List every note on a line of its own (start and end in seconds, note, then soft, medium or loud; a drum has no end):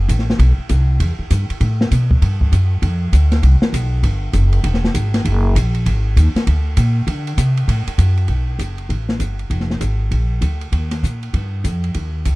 0.09 0.38 A1 medium
0.09 kick soft
0.09 hi-hat pedal soft
0.09 ride medium
0.19 snare soft
0.30 snare soft
0.39 0.57 B1 medium
0.39 kick soft
0.39 ride medium
0.58 muted upright bass stroke soft
0.69 0.99 C2 medium
0.69 kick soft
0.69 hi-hat pedal medium
0.69 ride medium
1.00 1.18 E2 medium
1.00 kick soft
1.00 ride medium
1.19 muted upright bass stroke soft
1.30 1.48 G2 medium
1.30 kick soft
1.30 hi-hat pedal medium
1.30 ride medium
1.50 muted upright bass stroke soft
1.50 ride soft
1.61 1.90 A2 medium
1.61 kick soft
1.61 ride medium
1.81 snare soft
1.91 2.21 B2 medium
1.91 kick soft
1.91 hi-hat pedal medium
1.91 ride medium
2.11 kick medium
2.22 2.51 G2 medium
2.22 kick soft
2.22 ride medium
2.41 kick soft
2.52 2.81 F#2 medium
2.52 kick soft
2.52 hi-hat pedal medium
2.52 ride medium
2.82 3.11 F2 medium
2.82 kick soft
2.82 ride medium
3.13 3.42 D2 medium
3.13 kick soft
3.13 hi-hat pedal medium
3.13 ride medium
3.32 snare soft
3.32 ride soft
3.43 3.60 C2 medium
3.43 kick soft
3.43 ride medium
3.62 muted upright bass stroke soft
3.62 snare medium
3.72 4.02 B1 medium
3.72 kick soft
3.72 hi-hat pedal medium
3.72 ride medium
4.03 4.33 G1 medium
4.03 kick soft
4.03 ride medium
4.33 4.63 F#1 medium
4.33 kick soft
4.33 hi-hat pedal soft
4.33 ride medium
4.53 ride soft
4.64 4.93 E1 medium
4.64 kick soft
4.64 ride medium
4.74 snare soft
4.85 snare soft
4.94 5.24 G#1 medium
4.94 kick soft
4.94 hi-hat pedal medium
4.94 ride medium
5.14 snare soft
5.14 ride soft
5.25 5.54 F#1 medium
5.25 kick soft
5.25 ride medium
5.55 5.84 A#1 medium
5.55 kick soft
5.55 hi-hat pedal medium
5.55 ride medium
5.74 ride soft
5.86 6.15 G#1 medium
5.86 kick soft
5.86 ride medium
6.17 6.34 D#2 medium
6.17 kick soft
6.17 hi-hat pedal soft
6.17 ride medium
6.35 muted upright bass stroke soft
6.35 snare soft
6.35 ride soft
6.47 6.76 D2 medium
6.47 kick soft
6.47 ride medium
6.77 7.06 A#2 medium
6.77 kick soft
6.77 hi-hat pedal medium
6.77 ride medium
7.07 7.36 D3 medium
7.07 kick soft
7.07 ride medium
7.27 ride soft
7.38 7.67 C3 medium
7.38 kick soft
7.38 hi-hat pedal medium
7.38 ride medium
7.57 ride soft
7.68 7.85 A2 medium
7.68 kick soft
7.68 ride medium
7.87 muted upright bass stroke soft
7.87 ride medium
7.98 8.28 F#2 medium
7.98 kick soft
7.98 hi-hat pedal medium
7.98 ride medium
8.17 ride soft
8.28 8.58 B1 medium
8.28 kick soft
8.28 ride soft
8.59 8.88 F#1 medium
8.59 kick soft
8.59 hi-hat pedal soft
8.59 ride soft
8.78 ride soft
8.89 9.19 A1 medium
8.89 kick soft
8.89 ride soft
9.09 snare soft
9.19 9.49 G1 medium
9.19 kick soft
9.19 hi-hat pedal soft
9.19 ride soft
9.39 ride soft
9.50 9.80 F1 medium
9.50 kick soft
9.50 ride soft
9.60 snare soft
9.71 snare soft
9.81 10.11 G#1 medium
9.81 kick soft
9.81 hi-hat pedal medium
9.81 ride soft
10.11 10.41 A#1 medium
10.11 kick soft
10.11 ride soft
10.41 10.72 D2 medium
10.41 kick soft
10.41 hi-hat pedal soft
10.41 ride medium
10.61 ride soft
10.72 11.02 D#2 medium
10.72 kick soft
10.72 ride medium
10.91 snare soft
10.91 ride medium
11.03 11.33 A#2 medium
11.03 kick soft
11.03 hi-hat pedal soft
11.23 ride soft
11.34 11.64 G2 medium
11.34 kick soft
11.34 ride soft
11.64 11.94 F2 medium
11.64 kick soft
11.64 hi-hat pedal soft
11.64 ride soft
11.84 ride soft
11.94 12.25 D#2 medium
11.94 kick soft
11.94 ride soft
12.25 12.35 C#2 medium
12.25 kick soft
12.25 hi-hat pedal soft
12.25 ride medium